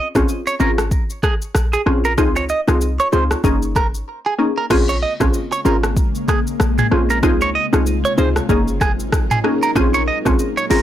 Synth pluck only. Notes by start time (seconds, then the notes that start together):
0.15 C4 C#4 F4 G#4
0.60 C4 C#4 F4 G#4
1.86 C4 C#4 F4 G#4
2.18 C4 D#4 F4 G#4
2.67 C4 D#4 F4 G#4
3.12 C4 D#4 F4 G#4
3.44 A#3 C#4 D#4 G#4
4.39 A#3 C#4 D#4 G#4
4.70 C4 C#4 F4 G#4
5.20 C4 C#4 F4 G#4
5.65 C4 C#4 F4 G#4
6.91 C4 C#4 F4 G#4
7.23 C4 D#4 F4 G#4
7.73 C4 D#4 F4 G#4
8.18 C4 D#4 F4 G#4
8.49 A#3 C#4 D#4 G#4
9.44 A#3 C#4 D#4 G#4
9.75 C4 C#4 F4 G#4
10.25 C4 C#4 F4 G#4
10.70 C4 C#4 F4 G#4